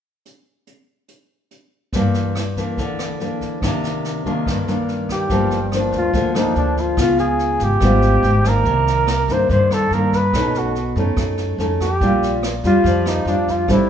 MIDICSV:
0, 0, Header, 1, 5, 480
1, 0, Start_track
1, 0, Key_signature, -2, "minor"
1, 0, Tempo, 419580
1, 289, Time_signature, 4, 2, 24, 8
1, 15897, End_track
2, 0, Start_track
2, 0, Title_t, "Flugelhorn"
2, 0, Program_c, 0, 56
2, 5861, Note_on_c, 0, 67, 83
2, 6517, Note_off_c, 0, 67, 0
2, 6839, Note_on_c, 0, 65, 86
2, 7293, Note_on_c, 0, 63, 79
2, 7310, Note_off_c, 0, 65, 0
2, 7515, Note_off_c, 0, 63, 0
2, 7522, Note_on_c, 0, 62, 79
2, 7784, Note_on_c, 0, 65, 79
2, 7801, Note_off_c, 0, 62, 0
2, 8005, Note_off_c, 0, 65, 0
2, 8012, Note_on_c, 0, 65, 84
2, 8223, Note_off_c, 0, 65, 0
2, 8235, Note_on_c, 0, 68, 86
2, 8736, Note_on_c, 0, 67, 106
2, 8753, Note_off_c, 0, 68, 0
2, 9706, Note_on_c, 0, 70, 94
2, 9724, Note_off_c, 0, 67, 0
2, 10665, Note_on_c, 0, 72, 88
2, 10682, Note_off_c, 0, 70, 0
2, 10872, Note_off_c, 0, 72, 0
2, 10879, Note_on_c, 0, 72, 89
2, 11134, Note_on_c, 0, 69, 86
2, 11151, Note_off_c, 0, 72, 0
2, 11364, Note_on_c, 0, 70, 95
2, 11381, Note_off_c, 0, 69, 0
2, 11617, Note_on_c, 0, 71, 94
2, 11634, Note_off_c, 0, 70, 0
2, 12109, Note_on_c, 0, 66, 79
2, 12126, Note_off_c, 0, 71, 0
2, 12565, Note_off_c, 0, 66, 0
2, 13519, Note_on_c, 0, 67, 91
2, 14181, Note_off_c, 0, 67, 0
2, 14490, Note_on_c, 0, 65, 82
2, 14965, Note_on_c, 0, 63, 78
2, 14983, Note_off_c, 0, 65, 0
2, 15196, Note_on_c, 0, 62, 74
2, 15214, Note_off_c, 0, 63, 0
2, 15451, Note_on_c, 0, 65, 76
2, 15468, Note_off_c, 0, 62, 0
2, 15696, Note_on_c, 0, 64, 85
2, 15713, Note_off_c, 0, 65, 0
2, 15897, Note_off_c, 0, 64, 0
2, 15897, End_track
3, 0, Start_track
3, 0, Title_t, "Nylon-string guitar"
3, 0, Program_c, 1, 24
3, 2229, Note_on_c, 1, 52, 50
3, 2231, Note_on_c, 1, 43, 62
3, 2238, Note_on_c, 1, 58, 58
3, 2245, Note_on_c, 1, 62, 56
3, 2699, Note_off_c, 1, 52, 0
3, 2705, Note_off_c, 1, 58, 0
3, 2705, Note_off_c, 1, 62, 0
3, 2949, Note_on_c, 1, 52, 55
3, 2952, Note_on_c, 1, 58, 59
3, 2957, Note_on_c, 1, 62, 56
3, 3161, Note_off_c, 1, 43, 0
3, 3192, Note_on_c, 1, 50, 64
3, 3626, Note_off_c, 1, 52, 0
3, 3626, Note_off_c, 1, 58, 0
3, 3629, Note_off_c, 1, 62, 0
3, 3672, Note_on_c, 1, 52, 43
3, 3677, Note_on_c, 1, 58, 51
3, 3683, Note_on_c, 1, 62, 54
3, 4108, Note_off_c, 1, 52, 0
3, 4110, Note_off_c, 1, 58, 0
3, 4113, Note_off_c, 1, 62, 0
3, 4123, Note_off_c, 1, 50, 0
3, 4151, Note_on_c, 1, 48, 66
3, 4152, Note_on_c, 1, 51, 56
3, 4156, Note_on_c, 1, 58, 49
3, 4162, Note_on_c, 1, 62, 55
3, 4827, Note_off_c, 1, 51, 0
3, 4832, Note_off_c, 1, 58, 0
3, 4832, Note_off_c, 1, 62, 0
3, 4872, Note_on_c, 1, 51, 64
3, 4879, Note_on_c, 1, 58, 57
3, 4879, Note_on_c, 1, 62, 57
3, 5084, Note_off_c, 1, 48, 0
3, 5120, Note_on_c, 1, 43, 64
3, 5309, Note_off_c, 1, 51, 0
3, 5311, Note_off_c, 1, 62, 0
3, 5312, Note_off_c, 1, 58, 0
3, 5355, Note_on_c, 1, 51, 52
3, 5359, Note_on_c, 1, 58, 55
3, 5360, Note_on_c, 1, 62, 63
3, 6031, Note_off_c, 1, 51, 0
3, 6031, Note_off_c, 1, 58, 0
3, 6034, Note_off_c, 1, 62, 0
3, 6049, Note_off_c, 1, 43, 0
3, 6069, Note_on_c, 1, 43, 53
3, 6072, Note_on_c, 1, 53, 49
3, 6076, Note_on_c, 1, 62, 61
3, 6077, Note_on_c, 1, 58, 58
3, 6376, Note_off_c, 1, 53, 0
3, 6377, Note_off_c, 1, 58, 0
3, 6379, Note_off_c, 1, 62, 0
3, 6554, Note_on_c, 1, 53, 53
3, 6560, Note_on_c, 1, 58, 56
3, 6567, Note_on_c, 1, 62, 57
3, 6991, Note_off_c, 1, 53, 0
3, 6994, Note_off_c, 1, 58, 0
3, 6998, Note_off_c, 1, 62, 0
3, 7004, Note_off_c, 1, 43, 0
3, 7024, Note_on_c, 1, 53, 50
3, 7029, Note_on_c, 1, 50, 54
3, 7033, Note_on_c, 1, 58, 57
3, 7039, Note_on_c, 1, 62, 61
3, 7226, Note_off_c, 1, 53, 0
3, 7230, Note_off_c, 1, 58, 0
3, 7234, Note_off_c, 1, 62, 0
3, 7266, Note_on_c, 1, 53, 53
3, 7274, Note_on_c, 1, 58, 57
3, 7274, Note_on_c, 1, 62, 62
3, 7948, Note_off_c, 1, 53, 0
3, 7951, Note_off_c, 1, 58, 0
3, 7952, Note_off_c, 1, 62, 0
3, 7964, Note_off_c, 1, 50, 0
3, 7980, Note_on_c, 1, 49, 52
3, 7988, Note_on_c, 1, 59, 50
3, 7990, Note_on_c, 1, 65, 66
3, 8907, Note_off_c, 1, 59, 0
3, 8910, Note_off_c, 1, 65, 0
3, 8920, Note_off_c, 1, 49, 0
3, 8948, Note_on_c, 1, 44, 58
3, 8949, Note_on_c, 1, 55, 57
3, 8955, Note_on_c, 1, 59, 62
3, 8960, Note_on_c, 1, 65, 64
3, 9423, Note_off_c, 1, 55, 0
3, 9427, Note_off_c, 1, 59, 0
3, 9430, Note_off_c, 1, 65, 0
3, 9675, Note_on_c, 1, 51, 62
3, 9681, Note_on_c, 1, 58, 63
3, 9687, Note_on_c, 1, 62, 72
3, 9883, Note_off_c, 1, 44, 0
3, 9903, Note_on_c, 1, 48, 55
3, 10353, Note_off_c, 1, 51, 0
3, 10353, Note_off_c, 1, 58, 0
3, 10358, Note_off_c, 1, 62, 0
3, 10636, Note_on_c, 1, 51, 59
3, 10643, Note_on_c, 1, 58, 57
3, 10648, Note_on_c, 1, 62, 62
3, 10839, Note_off_c, 1, 48, 0
3, 10879, Note_on_c, 1, 43, 57
3, 11311, Note_off_c, 1, 51, 0
3, 11313, Note_off_c, 1, 58, 0
3, 11317, Note_off_c, 1, 62, 0
3, 11365, Note_on_c, 1, 51, 44
3, 11369, Note_on_c, 1, 58, 55
3, 11376, Note_on_c, 1, 62, 53
3, 11663, Note_off_c, 1, 51, 0
3, 11664, Note_off_c, 1, 58, 0
3, 11669, Note_off_c, 1, 62, 0
3, 11806, Note_off_c, 1, 43, 0
3, 11842, Note_on_c, 1, 57, 52
3, 11843, Note_on_c, 1, 47, 55
3, 11851, Note_on_c, 1, 61, 57
3, 11860, Note_on_c, 1, 63, 59
3, 12308, Note_off_c, 1, 57, 0
3, 12314, Note_off_c, 1, 61, 0
3, 12316, Note_off_c, 1, 63, 0
3, 12555, Note_on_c, 1, 57, 53
3, 12565, Note_on_c, 1, 61, 67
3, 12566, Note_on_c, 1, 63, 59
3, 12767, Note_off_c, 1, 47, 0
3, 13228, Note_off_c, 1, 57, 0
3, 13233, Note_off_c, 1, 61, 0
3, 13233, Note_off_c, 1, 63, 0
3, 13272, Note_on_c, 1, 57, 57
3, 13276, Note_on_c, 1, 61, 49
3, 13282, Note_on_c, 1, 63, 60
3, 13574, Note_off_c, 1, 57, 0
3, 13576, Note_off_c, 1, 61, 0
3, 13579, Note_off_c, 1, 63, 0
3, 13759, Note_on_c, 1, 46, 58
3, 13761, Note_on_c, 1, 55, 52
3, 13765, Note_on_c, 1, 62, 53
3, 13769, Note_on_c, 1, 65, 58
3, 14224, Note_off_c, 1, 55, 0
3, 14228, Note_off_c, 1, 62, 0
3, 14229, Note_off_c, 1, 65, 0
3, 14471, Note_on_c, 1, 55, 60
3, 14482, Note_on_c, 1, 62, 60
3, 14486, Note_on_c, 1, 65, 66
3, 14683, Note_off_c, 1, 46, 0
3, 14709, Note_on_c, 1, 53, 55
3, 15143, Note_off_c, 1, 55, 0
3, 15149, Note_off_c, 1, 62, 0
3, 15149, Note_off_c, 1, 65, 0
3, 15182, Note_on_c, 1, 55, 46
3, 15192, Note_on_c, 1, 62, 58
3, 15195, Note_on_c, 1, 65, 56
3, 15618, Note_off_c, 1, 55, 0
3, 15624, Note_off_c, 1, 62, 0
3, 15624, Note_off_c, 1, 65, 0
3, 15636, Note_off_c, 1, 53, 0
3, 15651, Note_on_c, 1, 45, 56
3, 15659, Note_on_c, 1, 55, 51
3, 15660, Note_on_c, 1, 60, 52
3, 15668, Note_on_c, 1, 62, 65
3, 15897, Note_off_c, 1, 45, 0
3, 15897, Note_off_c, 1, 55, 0
3, 15897, Note_off_c, 1, 60, 0
3, 15897, Note_off_c, 1, 62, 0
3, 15897, End_track
4, 0, Start_track
4, 0, Title_t, "Upright bass"
4, 0, Program_c, 2, 32
4, 6063, Note_on_c, 2, 31, 83
4, 6739, Note_off_c, 2, 31, 0
4, 6776, Note_on_c, 2, 38, 91
4, 7003, Note_off_c, 2, 38, 0
4, 7017, Note_on_c, 2, 38, 97
4, 7467, Note_off_c, 2, 38, 0
4, 7500, Note_on_c, 2, 38, 81
4, 7949, Note_off_c, 2, 38, 0
4, 7972, Note_on_c, 2, 37, 87
4, 8653, Note_off_c, 2, 37, 0
4, 8694, Note_on_c, 2, 32, 96
4, 8923, Note_off_c, 2, 32, 0
4, 8932, Note_on_c, 2, 32, 95
4, 9385, Note_off_c, 2, 32, 0
4, 9411, Note_on_c, 2, 32, 88
4, 9864, Note_off_c, 2, 32, 0
4, 9897, Note_on_c, 2, 36, 89
4, 10575, Note_off_c, 2, 36, 0
4, 10617, Note_on_c, 2, 43, 87
4, 10844, Note_off_c, 2, 43, 0
4, 10860, Note_on_c, 2, 43, 92
4, 11308, Note_off_c, 2, 43, 0
4, 11335, Note_on_c, 2, 43, 94
4, 11785, Note_off_c, 2, 43, 0
4, 11824, Note_on_c, 2, 35, 80
4, 12496, Note_off_c, 2, 35, 0
4, 12534, Note_on_c, 2, 42, 90
4, 12760, Note_off_c, 2, 42, 0
4, 12773, Note_on_c, 2, 42, 95
4, 13222, Note_off_c, 2, 42, 0
4, 13252, Note_on_c, 2, 41, 86
4, 13701, Note_off_c, 2, 41, 0
4, 13741, Note_on_c, 2, 34, 93
4, 14412, Note_off_c, 2, 34, 0
4, 14455, Note_on_c, 2, 41, 85
4, 14678, Note_off_c, 2, 41, 0
4, 14689, Note_on_c, 2, 41, 96
4, 15137, Note_off_c, 2, 41, 0
4, 15160, Note_on_c, 2, 41, 88
4, 15612, Note_off_c, 2, 41, 0
4, 15653, Note_on_c, 2, 33, 78
4, 15897, Note_off_c, 2, 33, 0
4, 15897, End_track
5, 0, Start_track
5, 0, Title_t, "Drums"
5, 292, Note_on_c, 9, 42, 36
5, 406, Note_off_c, 9, 42, 0
5, 766, Note_on_c, 9, 42, 36
5, 880, Note_off_c, 9, 42, 0
5, 1240, Note_on_c, 9, 42, 34
5, 1354, Note_off_c, 9, 42, 0
5, 1726, Note_on_c, 9, 42, 30
5, 1840, Note_off_c, 9, 42, 0
5, 2202, Note_on_c, 9, 38, 21
5, 2205, Note_on_c, 9, 36, 54
5, 2316, Note_off_c, 9, 38, 0
5, 2320, Note_off_c, 9, 36, 0
5, 2449, Note_on_c, 9, 38, 20
5, 2563, Note_off_c, 9, 38, 0
5, 2691, Note_on_c, 9, 37, 56
5, 2691, Note_on_c, 9, 38, 22
5, 2806, Note_off_c, 9, 37, 0
5, 2806, Note_off_c, 9, 38, 0
5, 2933, Note_on_c, 9, 36, 20
5, 2937, Note_on_c, 9, 38, 21
5, 3047, Note_off_c, 9, 36, 0
5, 3051, Note_off_c, 9, 38, 0
5, 3174, Note_on_c, 9, 36, 48
5, 3178, Note_on_c, 9, 38, 23
5, 3289, Note_off_c, 9, 36, 0
5, 3292, Note_off_c, 9, 38, 0
5, 3419, Note_on_c, 9, 37, 54
5, 3419, Note_on_c, 9, 38, 22
5, 3533, Note_off_c, 9, 37, 0
5, 3533, Note_off_c, 9, 38, 0
5, 3660, Note_on_c, 9, 38, 20
5, 3774, Note_off_c, 9, 38, 0
5, 3897, Note_on_c, 9, 36, 19
5, 3900, Note_on_c, 9, 38, 18
5, 4012, Note_off_c, 9, 36, 0
5, 4015, Note_off_c, 9, 38, 0
5, 4140, Note_on_c, 9, 36, 56
5, 4145, Note_on_c, 9, 37, 59
5, 4145, Note_on_c, 9, 38, 23
5, 4255, Note_off_c, 9, 36, 0
5, 4260, Note_off_c, 9, 37, 0
5, 4260, Note_off_c, 9, 38, 0
5, 4389, Note_on_c, 9, 38, 21
5, 4503, Note_off_c, 9, 38, 0
5, 4627, Note_on_c, 9, 38, 26
5, 4742, Note_off_c, 9, 38, 0
5, 4865, Note_on_c, 9, 36, 23
5, 4874, Note_on_c, 9, 38, 22
5, 4979, Note_off_c, 9, 36, 0
5, 4988, Note_off_c, 9, 38, 0
5, 5106, Note_on_c, 9, 36, 56
5, 5115, Note_on_c, 9, 37, 47
5, 5115, Note_on_c, 9, 38, 23
5, 5220, Note_off_c, 9, 36, 0
5, 5230, Note_off_c, 9, 37, 0
5, 5230, Note_off_c, 9, 38, 0
5, 5349, Note_on_c, 9, 38, 23
5, 5464, Note_off_c, 9, 38, 0
5, 5588, Note_on_c, 9, 38, 18
5, 5703, Note_off_c, 9, 38, 0
5, 5821, Note_on_c, 9, 36, 20
5, 5824, Note_on_c, 9, 37, 45
5, 5824, Note_on_c, 9, 38, 19
5, 5936, Note_off_c, 9, 36, 0
5, 5939, Note_off_c, 9, 37, 0
5, 5939, Note_off_c, 9, 38, 0
5, 6058, Note_on_c, 9, 38, 25
5, 6060, Note_on_c, 9, 36, 55
5, 6172, Note_off_c, 9, 38, 0
5, 6174, Note_off_c, 9, 36, 0
5, 6299, Note_on_c, 9, 38, 22
5, 6414, Note_off_c, 9, 38, 0
5, 6542, Note_on_c, 9, 37, 59
5, 6542, Note_on_c, 9, 38, 23
5, 6656, Note_off_c, 9, 37, 0
5, 6656, Note_off_c, 9, 38, 0
5, 6779, Note_on_c, 9, 36, 24
5, 6780, Note_on_c, 9, 38, 22
5, 6893, Note_off_c, 9, 36, 0
5, 6894, Note_off_c, 9, 38, 0
5, 7018, Note_on_c, 9, 36, 55
5, 7018, Note_on_c, 9, 38, 21
5, 7132, Note_off_c, 9, 36, 0
5, 7133, Note_off_c, 9, 38, 0
5, 7263, Note_on_c, 9, 37, 52
5, 7263, Note_on_c, 9, 38, 23
5, 7377, Note_off_c, 9, 37, 0
5, 7377, Note_off_c, 9, 38, 0
5, 7499, Note_on_c, 9, 38, 20
5, 7614, Note_off_c, 9, 38, 0
5, 7739, Note_on_c, 9, 36, 21
5, 7747, Note_on_c, 9, 38, 21
5, 7853, Note_off_c, 9, 36, 0
5, 7861, Note_off_c, 9, 38, 0
5, 7976, Note_on_c, 9, 37, 60
5, 7976, Note_on_c, 9, 38, 24
5, 7977, Note_on_c, 9, 36, 58
5, 8090, Note_off_c, 9, 37, 0
5, 8090, Note_off_c, 9, 38, 0
5, 8091, Note_off_c, 9, 36, 0
5, 8219, Note_on_c, 9, 38, 23
5, 8333, Note_off_c, 9, 38, 0
5, 8454, Note_on_c, 9, 38, 25
5, 8569, Note_off_c, 9, 38, 0
5, 8689, Note_on_c, 9, 38, 22
5, 8695, Note_on_c, 9, 36, 23
5, 8803, Note_off_c, 9, 38, 0
5, 8809, Note_off_c, 9, 36, 0
5, 8927, Note_on_c, 9, 37, 52
5, 8927, Note_on_c, 9, 38, 21
5, 8933, Note_on_c, 9, 36, 52
5, 9041, Note_off_c, 9, 37, 0
5, 9041, Note_off_c, 9, 38, 0
5, 9048, Note_off_c, 9, 36, 0
5, 9173, Note_on_c, 9, 38, 22
5, 9287, Note_off_c, 9, 38, 0
5, 9420, Note_on_c, 9, 38, 22
5, 9534, Note_off_c, 9, 38, 0
5, 9658, Note_on_c, 9, 36, 17
5, 9660, Note_on_c, 9, 37, 54
5, 9660, Note_on_c, 9, 38, 22
5, 9773, Note_off_c, 9, 36, 0
5, 9774, Note_off_c, 9, 37, 0
5, 9774, Note_off_c, 9, 38, 0
5, 9900, Note_on_c, 9, 36, 58
5, 9900, Note_on_c, 9, 38, 24
5, 10014, Note_off_c, 9, 36, 0
5, 10015, Note_off_c, 9, 38, 0
5, 10146, Note_on_c, 9, 38, 22
5, 10261, Note_off_c, 9, 38, 0
5, 10377, Note_on_c, 9, 37, 60
5, 10377, Note_on_c, 9, 38, 25
5, 10491, Note_off_c, 9, 37, 0
5, 10491, Note_off_c, 9, 38, 0
5, 10619, Note_on_c, 9, 36, 24
5, 10621, Note_on_c, 9, 38, 23
5, 10733, Note_off_c, 9, 36, 0
5, 10736, Note_off_c, 9, 38, 0
5, 10860, Note_on_c, 9, 36, 57
5, 10864, Note_on_c, 9, 38, 22
5, 10974, Note_off_c, 9, 36, 0
5, 10978, Note_off_c, 9, 38, 0
5, 11104, Note_on_c, 9, 37, 54
5, 11104, Note_on_c, 9, 38, 21
5, 11219, Note_off_c, 9, 37, 0
5, 11219, Note_off_c, 9, 38, 0
5, 11348, Note_on_c, 9, 38, 23
5, 11463, Note_off_c, 9, 38, 0
5, 11580, Note_on_c, 9, 36, 21
5, 11584, Note_on_c, 9, 38, 20
5, 11695, Note_off_c, 9, 36, 0
5, 11699, Note_off_c, 9, 38, 0
5, 11820, Note_on_c, 9, 36, 60
5, 11823, Note_on_c, 9, 37, 65
5, 11823, Note_on_c, 9, 38, 24
5, 11935, Note_off_c, 9, 36, 0
5, 11937, Note_off_c, 9, 37, 0
5, 11937, Note_off_c, 9, 38, 0
5, 12063, Note_on_c, 9, 38, 23
5, 12177, Note_off_c, 9, 38, 0
5, 12299, Note_on_c, 9, 38, 23
5, 12414, Note_off_c, 9, 38, 0
5, 12537, Note_on_c, 9, 36, 22
5, 12542, Note_on_c, 9, 38, 22
5, 12651, Note_off_c, 9, 36, 0
5, 12657, Note_off_c, 9, 38, 0
5, 12775, Note_on_c, 9, 37, 55
5, 12775, Note_on_c, 9, 38, 23
5, 12776, Note_on_c, 9, 36, 57
5, 12890, Note_off_c, 9, 36, 0
5, 12890, Note_off_c, 9, 37, 0
5, 12890, Note_off_c, 9, 38, 0
5, 13013, Note_on_c, 9, 38, 22
5, 13127, Note_off_c, 9, 38, 0
5, 13262, Note_on_c, 9, 38, 22
5, 13376, Note_off_c, 9, 38, 0
5, 13497, Note_on_c, 9, 36, 22
5, 13503, Note_on_c, 9, 37, 45
5, 13503, Note_on_c, 9, 38, 19
5, 13611, Note_off_c, 9, 36, 0
5, 13618, Note_off_c, 9, 37, 0
5, 13618, Note_off_c, 9, 38, 0
5, 13737, Note_on_c, 9, 36, 65
5, 13743, Note_on_c, 9, 38, 23
5, 13851, Note_off_c, 9, 36, 0
5, 13857, Note_off_c, 9, 38, 0
5, 13986, Note_on_c, 9, 38, 24
5, 14101, Note_off_c, 9, 38, 0
5, 14219, Note_on_c, 9, 37, 63
5, 14219, Note_on_c, 9, 38, 24
5, 14333, Note_off_c, 9, 37, 0
5, 14333, Note_off_c, 9, 38, 0
5, 14455, Note_on_c, 9, 36, 23
5, 14457, Note_on_c, 9, 38, 23
5, 14569, Note_off_c, 9, 36, 0
5, 14572, Note_off_c, 9, 38, 0
5, 14695, Note_on_c, 9, 36, 52
5, 14699, Note_on_c, 9, 38, 25
5, 14809, Note_off_c, 9, 36, 0
5, 14813, Note_off_c, 9, 38, 0
5, 14938, Note_on_c, 9, 37, 56
5, 14938, Note_on_c, 9, 38, 23
5, 15052, Note_off_c, 9, 37, 0
5, 15052, Note_off_c, 9, 38, 0
5, 15178, Note_on_c, 9, 38, 21
5, 15292, Note_off_c, 9, 38, 0
5, 15415, Note_on_c, 9, 36, 21
5, 15420, Note_on_c, 9, 38, 20
5, 15529, Note_off_c, 9, 36, 0
5, 15534, Note_off_c, 9, 38, 0
5, 15653, Note_on_c, 9, 36, 62
5, 15653, Note_on_c, 9, 37, 57
5, 15653, Note_on_c, 9, 38, 22
5, 15767, Note_off_c, 9, 36, 0
5, 15768, Note_off_c, 9, 37, 0
5, 15768, Note_off_c, 9, 38, 0
5, 15897, End_track
0, 0, End_of_file